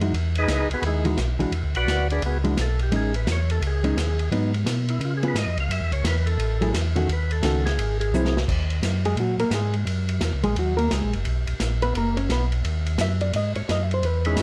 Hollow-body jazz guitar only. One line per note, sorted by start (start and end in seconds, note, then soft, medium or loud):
0.01 0.13 E3 medium
0.01 0.12 G#3 medium
0.01 0.13 D#4 medium
0.01 0.13 F#4 medium
1.05 1.17 E3 medium
1.05 1.17 G#3 medium
1.05 1.17 D#4 medium
1.05 1.17 F#4 medium
1.39 1.51 E3 medium
1.39 1.51 G#3 medium
1.39 1.51 D4 medium
1.39 1.52 F#4 medium
2.44 2.56 E3 medium
2.44 2.56 G#3 medium
2.44 2.56 D4 medium
2.44 2.56 F#4 medium
2.92 3.11 G#3 medium
2.92 3.12 C#4 medium
2.92 3.12 D#4 medium
3.84 3.95 G#3 medium
3.84 3.95 C#4 medium
3.84 3.96 D#4 medium
4.32 4.51 F#3 medium
4.32 4.51 B3 medium
4.32 4.51 D#4 medium
5.23 5.34 B3 medium
5.23 5.35 F4 medium
5.23 5.35 G#4 medium
6.61 6.73 F#3 medium
6.61 6.73 A3 medium
6.61 6.73 E4 medium
6.61 6.73 G#4 medium
6.96 7.07 D#3 medium
6.96 7.08 A3 medium
6.96 7.08 C#4 medium
6.96 7.08 F#4 loud
7.44 7.63 D#3 medium
7.44 7.64 A3 medium
7.44 7.64 C#4 medium
7.44 7.64 F#4 medium
8.14 8.33 F#3 medium
8.14 8.34 C4 medium
8.14 8.34 E4 medium
9.06 9.18 G#3 medium
9.06 9.17 G#4 medium
9.20 9.40 F#3 medium
9.20 9.39 F#4 medium
9.40 9.52 A#3 medium
9.40 9.52 A#4 loud
9.54 9.75 G#3 medium
9.54 9.74 G#4 medium
10.44 10.56 G#3 medium
10.44 10.56 G#4 medium
10.59 10.78 F#3 medium
10.59 10.79 F#4 medium
10.77 10.91 A#3 medium
10.77 10.90 A#4 loud
10.92 11.13 G#3 medium
10.92 11.12 G#4 medium
11.82 11.95 B3 medium
11.82 11.95 B4 loud
11.97 12.17 A#3 medium
11.97 12.17 A#4 medium
12.17 12.30 C#4 medium
12.17 12.29 C#5 loud
12.32 12.44 B3 medium
12.32 12.44 B4 loud
13.01 13.21 E5 medium
13.21 13.34 D5 medium
13.36 13.56 D#5 medium
13.56 13.68 C#5 loud
13.71 13.83 D#5 medium
13.83 13.93 E5 loud
13.94 14.04 C5 medium
14.05 14.27 B4 medium
14.27 14.38 G#4 loud